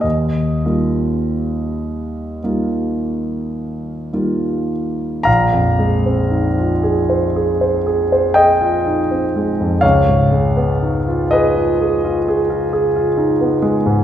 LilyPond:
\new Staff \with { instrumentName = "Grand piano" } { \time 9/8 \key bes \mixolydian \tempo 4. = 39 << { ees''1 r8 | <f'' bes''>2. <ees'' g''>4. | <des'' f''>4. <ces'' ees''>2~ <ces'' ees''>8 r8 | } \\ { ees,8 <g bes ees' f'>4. <g bes ees' f'>4. <g bes ees' f'>4 | bes,,16 f,16 aes16 c'16 ees'16 f'16 aes'16 c''16 aes'16 c''16 aes'16 c''16 aes'16 f'16 ees'16 c'16 aes16 f,16 | des,16 aes,16 aes16 ces'16 ees'16 f'16 aes'16 f'16 aes'16 f'16 aes'16 f'16 aes'16 f'16 ees'16 ces'16 aes16 aes,16 | } >> }